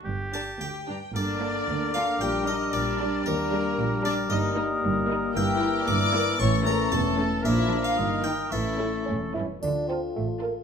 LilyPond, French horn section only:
\new Staff \with { instrumentName = "French horn section" } { \time 2/4 \key g \minor \tempo 4 = 114 << { r2 | d'2~ | d'2 | d'2 |
ees'2 | \key d \minor e'2 | cis'2 | d'4 ees'4 |
cis'4. r8 | a'2 | } \\ { r2 | bes2 | g2~ | g2 |
bes2~ | bes2 | a2 | bes2 |
a4. r8 | f'2 | } >> }